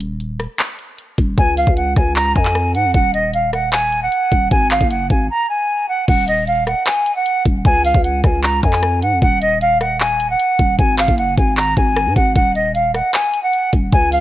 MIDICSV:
0, 0, Header, 1, 4, 480
1, 0, Start_track
1, 0, Key_signature, -6, "minor"
1, 0, Tempo, 392157
1, 1684, Time_signature, 4, 2, 24, 8
1, 17386, End_track
2, 0, Start_track
2, 0, Title_t, "Flute"
2, 0, Program_c, 0, 73
2, 1690, Note_on_c, 0, 80, 109
2, 1894, Note_off_c, 0, 80, 0
2, 1927, Note_on_c, 0, 77, 77
2, 2132, Note_off_c, 0, 77, 0
2, 2159, Note_on_c, 0, 78, 73
2, 2367, Note_off_c, 0, 78, 0
2, 2407, Note_on_c, 0, 80, 73
2, 2612, Note_off_c, 0, 80, 0
2, 2640, Note_on_c, 0, 82, 93
2, 2848, Note_off_c, 0, 82, 0
2, 2880, Note_on_c, 0, 80, 83
2, 3333, Note_off_c, 0, 80, 0
2, 3363, Note_on_c, 0, 78, 94
2, 3570, Note_off_c, 0, 78, 0
2, 3605, Note_on_c, 0, 78, 101
2, 3811, Note_off_c, 0, 78, 0
2, 3842, Note_on_c, 0, 75, 95
2, 4049, Note_off_c, 0, 75, 0
2, 4088, Note_on_c, 0, 77, 76
2, 4293, Note_off_c, 0, 77, 0
2, 4322, Note_on_c, 0, 78, 83
2, 4529, Note_off_c, 0, 78, 0
2, 4562, Note_on_c, 0, 80, 106
2, 4902, Note_off_c, 0, 80, 0
2, 4929, Note_on_c, 0, 78, 81
2, 5490, Note_off_c, 0, 78, 0
2, 5518, Note_on_c, 0, 80, 105
2, 5727, Note_off_c, 0, 80, 0
2, 5766, Note_on_c, 0, 77, 74
2, 5971, Note_off_c, 0, 77, 0
2, 6003, Note_on_c, 0, 78, 73
2, 6210, Note_off_c, 0, 78, 0
2, 6244, Note_on_c, 0, 80, 72
2, 6450, Note_off_c, 0, 80, 0
2, 6490, Note_on_c, 0, 82, 86
2, 6693, Note_off_c, 0, 82, 0
2, 6725, Note_on_c, 0, 80, 84
2, 7176, Note_off_c, 0, 80, 0
2, 7203, Note_on_c, 0, 78, 84
2, 7410, Note_off_c, 0, 78, 0
2, 7440, Note_on_c, 0, 78, 102
2, 7648, Note_off_c, 0, 78, 0
2, 7684, Note_on_c, 0, 75, 88
2, 7890, Note_off_c, 0, 75, 0
2, 7922, Note_on_c, 0, 77, 81
2, 8129, Note_off_c, 0, 77, 0
2, 8164, Note_on_c, 0, 78, 78
2, 8370, Note_off_c, 0, 78, 0
2, 8409, Note_on_c, 0, 80, 98
2, 8745, Note_off_c, 0, 80, 0
2, 8761, Note_on_c, 0, 78, 83
2, 9097, Note_off_c, 0, 78, 0
2, 9371, Note_on_c, 0, 80, 115
2, 9574, Note_off_c, 0, 80, 0
2, 9608, Note_on_c, 0, 77, 80
2, 9813, Note_off_c, 0, 77, 0
2, 9841, Note_on_c, 0, 78, 75
2, 10048, Note_off_c, 0, 78, 0
2, 10089, Note_on_c, 0, 80, 75
2, 10293, Note_off_c, 0, 80, 0
2, 10321, Note_on_c, 0, 82, 93
2, 10528, Note_off_c, 0, 82, 0
2, 10561, Note_on_c, 0, 80, 86
2, 11013, Note_off_c, 0, 80, 0
2, 11045, Note_on_c, 0, 78, 92
2, 11250, Note_off_c, 0, 78, 0
2, 11286, Note_on_c, 0, 78, 101
2, 11491, Note_off_c, 0, 78, 0
2, 11523, Note_on_c, 0, 75, 96
2, 11730, Note_off_c, 0, 75, 0
2, 11769, Note_on_c, 0, 77, 82
2, 11973, Note_off_c, 0, 77, 0
2, 12002, Note_on_c, 0, 78, 88
2, 12209, Note_off_c, 0, 78, 0
2, 12243, Note_on_c, 0, 80, 103
2, 12582, Note_off_c, 0, 80, 0
2, 12610, Note_on_c, 0, 78, 84
2, 13171, Note_off_c, 0, 78, 0
2, 13200, Note_on_c, 0, 80, 110
2, 13408, Note_off_c, 0, 80, 0
2, 13448, Note_on_c, 0, 77, 77
2, 13652, Note_off_c, 0, 77, 0
2, 13684, Note_on_c, 0, 78, 74
2, 13890, Note_off_c, 0, 78, 0
2, 13925, Note_on_c, 0, 80, 74
2, 14130, Note_off_c, 0, 80, 0
2, 14171, Note_on_c, 0, 82, 88
2, 14374, Note_off_c, 0, 82, 0
2, 14406, Note_on_c, 0, 80, 82
2, 14856, Note_off_c, 0, 80, 0
2, 14883, Note_on_c, 0, 78, 83
2, 15090, Note_off_c, 0, 78, 0
2, 15120, Note_on_c, 0, 78, 101
2, 15328, Note_off_c, 0, 78, 0
2, 15364, Note_on_c, 0, 75, 88
2, 15570, Note_off_c, 0, 75, 0
2, 15601, Note_on_c, 0, 77, 80
2, 15809, Note_off_c, 0, 77, 0
2, 15843, Note_on_c, 0, 78, 78
2, 16050, Note_off_c, 0, 78, 0
2, 16089, Note_on_c, 0, 80, 98
2, 16425, Note_off_c, 0, 80, 0
2, 16441, Note_on_c, 0, 78, 80
2, 16776, Note_off_c, 0, 78, 0
2, 17050, Note_on_c, 0, 80, 107
2, 17254, Note_off_c, 0, 80, 0
2, 17287, Note_on_c, 0, 77, 78
2, 17386, Note_off_c, 0, 77, 0
2, 17386, End_track
3, 0, Start_track
3, 0, Title_t, "808-style bass"
3, 0, Program_c, 1, 38
3, 0, Note_on_c, 1, 27, 113
3, 570, Note_off_c, 1, 27, 0
3, 1445, Note_on_c, 1, 27, 102
3, 1675, Note_off_c, 1, 27, 0
3, 1683, Note_on_c, 1, 37, 114
3, 2029, Note_off_c, 1, 37, 0
3, 2044, Note_on_c, 1, 37, 98
3, 2390, Note_off_c, 1, 37, 0
3, 2404, Note_on_c, 1, 37, 104
3, 2865, Note_off_c, 1, 37, 0
3, 2885, Note_on_c, 1, 41, 110
3, 3364, Note_on_c, 1, 44, 99
3, 3382, Note_off_c, 1, 41, 0
3, 3484, Note_on_c, 1, 41, 96
3, 3502, Note_off_c, 1, 44, 0
3, 3598, Note_off_c, 1, 41, 0
3, 3604, Note_on_c, 1, 27, 117
3, 4995, Note_off_c, 1, 27, 0
3, 5285, Note_on_c, 1, 27, 100
3, 5515, Note_off_c, 1, 27, 0
3, 5524, Note_on_c, 1, 32, 113
3, 5869, Note_off_c, 1, 32, 0
3, 5884, Note_on_c, 1, 30, 102
3, 6229, Note_off_c, 1, 30, 0
3, 6244, Note_on_c, 1, 32, 102
3, 6474, Note_off_c, 1, 32, 0
3, 7444, Note_on_c, 1, 27, 113
3, 8250, Note_off_c, 1, 27, 0
3, 9125, Note_on_c, 1, 27, 103
3, 9355, Note_off_c, 1, 27, 0
3, 9364, Note_on_c, 1, 37, 116
3, 9710, Note_off_c, 1, 37, 0
3, 9724, Note_on_c, 1, 37, 102
3, 10070, Note_off_c, 1, 37, 0
3, 10084, Note_on_c, 1, 37, 104
3, 10545, Note_off_c, 1, 37, 0
3, 10565, Note_on_c, 1, 41, 109
3, 11044, Note_on_c, 1, 44, 97
3, 11062, Note_off_c, 1, 41, 0
3, 11164, Note_on_c, 1, 41, 96
3, 11182, Note_off_c, 1, 44, 0
3, 11278, Note_off_c, 1, 41, 0
3, 11284, Note_on_c, 1, 27, 117
3, 12675, Note_off_c, 1, 27, 0
3, 12965, Note_on_c, 1, 27, 99
3, 13195, Note_off_c, 1, 27, 0
3, 13204, Note_on_c, 1, 32, 113
3, 13550, Note_off_c, 1, 32, 0
3, 13564, Note_on_c, 1, 30, 100
3, 13910, Note_off_c, 1, 30, 0
3, 13924, Note_on_c, 1, 32, 104
3, 14385, Note_off_c, 1, 32, 0
3, 14405, Note_on_c, 1, 32, 105
3, 14764, Note_on_c, 1, 44, 102
3, 14782, Note_off_c, 1, 32, 0
3, 14878, Note_off_c, 1, 44, 0
3, 14885, Note_on_c, 1, 32, 103
3, 15115, Note_off_c, 1, 32, 0
3, 15124, Note_on_c, 1, 27, 114
3, 15930, Note_off_c, 1, 27, 0
3, 16805, Note_on_c, 1, 27, 101
3, 17035, Note_off_c, 1, 27, 0
3, 17044, Note_on_c, 1, 37, 114
3, 17386, Note_off_c, 1, 37, 0
3, 17386, End_track
4, 0, Start_track
4, 0, Title_t, "Drums"
4, 4, Note_on_c, 9, 42, 76
4, 126, Note_off_c, 9, 42, 0
4, 244, Note_on_c, 9, 42, 81
4, 366, Note_off_c, 9, 42, 0
4, 484, Note_on_c, 9, 37, 72
4, 484, Note_on_c, 9, 42, 87
4, 606, Note_off_c, 9, 37, 0
4, 606, Note_off_c, 9, 42, 0
4, 724, Note_on_c, 9, 42, 83
4, 725, Note_on_c, 9, 39, 115
4, 846, Note_off_c, 9, 42, 0
4, 847, Note_off_c, 9, 39, 0
4, 964, Note_on_c, 9, 42, 87
4, 1087, Note_off_c, 9, 42, 0
4, 1204, Note_on_c, 9, 42, 81
4, 1326, Note_off_c, 9, 42, 0
4, 1444, Note_on_c, 9, 42, 84
4, 1445, Note_on_c, 9, 36, 95
4, 1566, Note_off_c, 9, 42, 0
4, 1567, Note_off_c, 9, 36, 0
4, 1684, Note_on_c, 9, 36, 116
4, 1684, Note_on_c, 9, 42, 78
4, 1806, Note_off_c, 9, 36, 0
4, 1806, Note_off_c, 9, 42, 0
4, 1924, Note_on_c, 9, 46, 83
4, 2044, Note_on_c, 9, 36, 96
4, 2046, Note_off_c, 9, 46, 0
4, 2164, Note_on_c, 9, 42, 81
4, 2166, Note_off_c, 9, 36, 0
4, 2286, Note_off_c, 9, 42, 0
4, 2404, Note_on_c, 9, 36, 100
4, 2404, Note_on_c, 9, 37, 70
4, 2404, Note_on_c, 9, 42, 84
4, 2526, Note_off_c, 9, 36, 0
4, 2526, Note_off_c, 9, 37, 0
4, 2526, Note_off_c, 9, 42, 0
4, 2644, Note_on_c, 9, 39, 120
4, 2644, Note_on_c, 9, 42, 87
4, 2766, Note_off_c, 9, 42, 0
4, 2767, Note_off_c, 9, 39, 0
4, 2884, Note_on_c, 9, 42, 85
4, 2885, Note_on_c, 9, 36, 95
4, 3003, Note_on_c, 9, 39, 71
4, 3006, Note_off_c, 9, 42, 0
4, 3007, Note_off_c, 9, 36, 0
4, 3124, Note_on_c, 9, 37, 95
4, 3124, Note_on_c, 9, 42, 78
4, 3126, Note_off_c, 9, 39, 0
4, 3246, Note_off_c, 9, 37, 0
4, 3246, Note_off_c, 9, 42, 0
4, 3364, Note_on_c, 9, 42, 82
4, 3486, Note_off_c, 9, 42, 0
4, 3604, Note_on_c, 9, 36, 115
4, 3604, Note_on_c, 9, 42, 80
4, 3726, Note_off_c, 9, 36, 0
4, 3726, Note_off_c, 9, 42, 0
4, 3844, Note_on_c, 9, 42, 75
4, 3966, Note_off_c, 9, 42, 0
4, 4084, Note_on_c, 9, 42, 81
4, 4206, Note_off_c, 9, 42, 0
4, 4324, Note_on_c, 9, 37, 70
4, 4324, Note_on_c, 9, 42, 84
4, 4446, Note_off_c, 9, 37, 0
4, 4446, Note_off_c, 9, 42, 0
4, 4564, Note_on_c, 9, 39, 113
4, 4564, Note_on_c, 9, 42, 82
4, 4686, Note_off_c, 9, 42, 0
4, 4687, Note_off_c, 9, 39, 0
4, 4804, Note_on_c, 9, 42, 91
4, 4926, Note_off_c, 9, 42, 0
4, 5044, Note_on_c, 9, 42, 81
4, 5166, Note_off_c, 9, 42, 0
4, 5284, Note_on_c, 9, 42, 79
4, 5285, Note_on_c, 9, 36, 96
4, 5406, Note_off_c, 9, 42, 0
4, 5407, Note_off_c, 9, 36, 0
4, 5523, Note_on_c, 9, 36, 117
4, 5523, Note_on_c, 9, 42, 82
4, 5646, Note_off_c, 9, 36, 0
4, 5646, Note_off_c, 9, 42, 0
4, 5763, Note_on_c, 9, 42, 78
4, 5763, Note_on_c, 9, 46, 81
4, 5764, Note_on_c, 9, 39, 97
4, 5883, Note_off_c, 9, 42, 0
4, 5883, Note_on_c, 9, 42, 47
4, 5884, Note_on_c, 9, 36, 97
4, 5886, Note_off_c, 9, 39, 0
4, 5886, Note_off_c, 9, 46, 0
4, 6004, Note_off_c, 9, 42, 0
4, 6004, Note_on_c, 9, 42, 81
4, 6006, Note_off_c, 9, 36, 0
4, 6126, Note_off_c, 9, 42, 0
4, 6244, Note_on_c, 9, 36, 102
4, 6244, Note_on_c, 9, 42, 84
4, 6366, Note_off_c, 9, 36, 0
4, 6366, Note_off_c, 9, 42, 0
4, 7444, Note_on_c, 9, 36, 112
4, 7444, Note_on_c, 9, 42, 81
4, 7444, Note_on_c, 9, 49, 109
4, 7567, Note_off_c, 9, 36, 0
4, 7567, Note_off_c, 9, 42, 0
4, 7567, Note_off_c, 9, 49, 0
4, 7684, Note_on_c, 9, 42, 79
4, 7807, Note_off_c, 9, 42, 0
4, 7924, Note_on_c, 9, 42, 80
4, 8046, Note_off_c, 9, 42, 0
4, 8164, Note_on_c, 9, 37, 73
4, 8164, Note_on_c, 9, 42, 88
4, 8286, Note_off_c, 9, 37, 0
4, 8286, Note_off_c, 9, 42, 0
4, 8404, Note_on_c, 9, 42, 84
4, 8405, Note_on_c, 9, 39, 119
4, 8527, Note_off_c, 9, 39, 0
4, 8527, Note_off_c, 9, 42, 0
4, 8644, Note_on_c, 9, 42, 88
4, 8767, Note_off_c, 9, 42, 0
4, 8884, Note_on_c, 9, 42, 83
4, 9007, Note_off_c, 9, 42, 0
4, 9124, Note_on_c, 9, 42, 82
4, 9125, Note_on_c, 9, 36, 101
4, 9247, Note_off_c, 9, 42, 0
4, 9248, Note_off_c, 9, 36, 0
4, 9364, Note_on_c, 9, 36, 118
4, 9364, Note_on_c, 9, 42, 82
4, 9486, Note_off_c, 9, 36, 0
4, 9487, Note_off_c, 9, 42, 0
4, 9604, Note_on_c, 9, 46, 85
4, 9724, Note_on_c, 9, 36, 99
4, 9727, Note_off_c, 9, 46, 0
4, 9844, Note_on_c, 9, 42, 80
4, 9847, Note_off_c, 9, 36, 0
4, 9967, Note_off_c, 9, 42, 0
4, 10084, Note_on_c, 9, 36, 104
4, 10084, Note_on_c, 9, 37, 71
4, 10084, Note_on_c, 9, 42, 85
4, 10206, Note_off_c, 9, 37, 0
4, 10206, Note_off_c, 9, 42, 0
4, 10207, Note_off_c, 9, 36, 0
4, 10324, Note_on_c, 9, 42, 85
4, 10325, Note_on_c, 9, 39, 114
4, 10447, Note_off_c, 9, 39, 0
4, 10447, Note_off_c, 9, 42, 0
4, 10564, Note_on_c, 9, 42, 91
4, 10565, Note_on_c, 9, 36, 94
4, 10684, Note_on_c, 9, 39, 68
4, 10686, Note_off_c, 9, 42, 0
4, 10688, Note_off_c, 9, 36, 0
4, 10804, Note_on_c, 9, 37, 95
4, 10804, Note_on_c, 9, 42, 83
4, 10806, Note_off_c, 9, 39, 0
4, 10926, Note_off_c, 9, 37, 0
4, 10926, Note_off_c, 9, 42, 0
4, 11044, Note_on_c, 9, 42, 83
4, 11166, Note_off_c, 9, 42, 0
4, 11284, Note_on_c, 9, 36, 118
4, 11284, Note_on_c, 9, 42, 82
4, 11406, Note_off_c, 9, 36, 0
4, 11407, Note_off_c, 9, 42, 0
4, 11524, Note_on_c, 9, 42, 80
4, 11646, Note_off_c, 9, 42, 0
4, 11764, Note_on_c, 9, 42, 81
4, 11886, Note_off_c, 9, 42, 0
4, 12004, Note_on_c, 9, 37, 70
4, 12004, Note_on_c, 9, 42, 86
4, 12126, Note_off_c, 9, 37, 0
4, 12126, Note_off_c, 9, 42, 0
4, 12244, Note_on_c, 9, 42, 86
4, 12245, Note_on_c, 9, 39, 120
4, 12366, Note_off_c, 9, 42, 0
4, 12367, Note_off_c, 9, 39, 0
4, 12484, Note_on_c, 9, 42, 91
4, 12606, Note_off_c, 9, 42, 0
4, 12724, Note_on_c, 9, 42, 84
4, 12846, Note_off_c, 9, 42, 0
4, 12964, Note_on_c, 9, 42, 83
4, 12965, Note_on_c, 9, 36, 97
4, 13086, Note_off_c, 9, 42, 0
4, 13087, Note_off_c, 9, 36, 0
4, 13204, Note_on_c, 9, 36, 115
4, 13204, Note_on_c, 9, 42, 79
4, 13326, Note_off_c, 9, 36, 0
4, 13326, Note_off_c, 9, 42, 0
4, 13444, Note_on_c, 9, 39, 97
4, 13444, Note_on_c, 9, 42, 81
4, 13444, Note_on_c, 9, 46, 83
4, 13564, Note_off_c, 9, 42, 0
4, 13564, Note_on_c, 9, 36, 95
4, 13564, Note_on_c, 9, 42, 48
4, 13566, Note_off_c, 9, 39, 0
4, 13566, Note_off_c, 9, 46, 0
4, 13684, Note_off_c, 9, 42, 0
4, 13684, Note_on_c, 9, 42, 81
4, 13686, Note_off_c, 9, 36, 0
4, 13806, Note_off_c, 9, 42, 0
4, 13924, Note_on_c, 9, 36, 104
4, 13924, Note_on_c, 9, 42, 86
4, 14046, Note_off_c, 9, 36, 0
4, 14046, Note_off_c, 9, 42, 0
4, 14164, Note_on_c, 9, 39, 117
4, 14164, Note_on_c, 9, 42, 84
4, 14286, Note_off_c, 9, 42, 0
4, 14287, Note_off_c, 9, 39, 0
4, 14404, Note_on_c, 9, 42, 87
4, 14405, Note_on_c, 9, 36, 100
4, 14526, Note_off_c, 9, 42, 0
4, 14528, Note_off_c, 9, 36, 0
4, 14644, Note_on_c, 9, 37, 100
4, 14644, Note_on_c, 9, 42, 81
4, 14766, Note_off_c, 9, 42, 0
4, 14767, Note_off_c, 9, 37, 0
4, 14884, Note_on_c, 9, 42, 82
4, 14885, Note_on_c, 9, 36, 102
4, 15006, Note_off_c, 9, 42, 0
4, 15007, Note_off_c, 9, 36, 0
4, 15124, Note_on_c, 9, 36, 121
4, 15124, Note_on_c, 9, 42, 83
4, 15246, Note_off_c, 9, 36, 0
4, 15246, Note_off_c, 9, 42, 0
4, 15364, Note_on_c, 9, 42, 81
4, 15486, Note_off_c, 9, 42, 0
4, 15604, Note_on_c, 9, 42, 77
4, 15726, Note_off_c, 9, 42, 0
4, 15844, Note_on_c, 9, 37, 73
4, 15844, Note_on_c, 9, 42, 87
4, 15967, Note_off_c, 9, 37, 0
4, 15967, Note_off_c, 9, 42, 0
4, 16084, Note_on_c, 9, 42, 83
4, 16085, Note_on_c, 9, 39, 115
4, 16207, Note_off_c, 9, 39, 0
4, 16207, Note_off_c, 9, 42, 0
4, 16324, Note_on_c, 9, 42, 90
4, 16447, Note_off_c, 9, 42, 0
4, 16564, Note_on_c, 9, 42, 83
4, 16687, Note_off_c, 9, 42, 0
4, 16804, Note_on_c, 9, 42, 81
4, 16805, Note_on_c, 9, 36, 96
4, 16927, Note_off_c, 9, 36, 0
4, 16927, Note_off_c, 9, 42, 0
4, 17044, Note_on_c, 9, 36, 116
4, 17044, Note_on_c, 9, 42, 81
4, 17166, Note_off_c, 9, 36, 0
4, 17166, Note_off_c, 9, 42, 0
4, 17284, Note_on_c, 9, 46, 83
4, 17386, Note_off_c, 9, 46, 0
4, 17386, End_track
0, 0, End_of_file